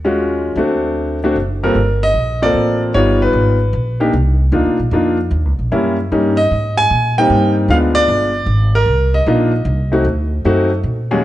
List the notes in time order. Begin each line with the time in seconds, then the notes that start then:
Already playing: D#2
0.05 G#3 C#4 F4 F#4
0.56 D2 A3 C4 D4 F#4
1.24 A3 C4 D4 F#4
1.36 F#1
1.63 G2 A#3 C4 F4 A4 A#4
1.75 G1
2.03 D#5
2.14 A#1
2.42 A#3 C4 F4 A4 D5
2.54 A1
2.94 G1 G3 B3 D#4 F4 C#5
3.22 B4
3.33 G#1
3.73 A#1
4.00 A#3 D4 D#4 G4
4.13 C2
4.52 D2 A#3 D4 D#4 F4
4.65 C2
4.79 A#1
4.91 F2 A#3 D4 D#4 F4
5.31 D#2
5.45 C#2
5.59 A#1
5.71 F#2 G3 A#3 C#4 E4
6.12 G2 G3 A#3 C#4 D#4
6.37 D#5
6.51 G#2
6.77 G#5
6.90 A#2
7.18 G3 A#3 C4 D#4 G5
7.30 G2
7.68 D2 G#3 B3 D4 F4 F5
7.95 D5
8.08 G1
8.46 G#1
8.75 A#4
8.86 C2
9.14 D#5
9.26 A#1 A#3 D4 D#4 F4 D#5
9.65 C2
9.92 A3 C4 D#4 F#4
10.04 D2
10.45 F#2 A3 C4 D#4 F#4
10.83 A#2
11.11 D#2 F#3 G#3 C#4 G#4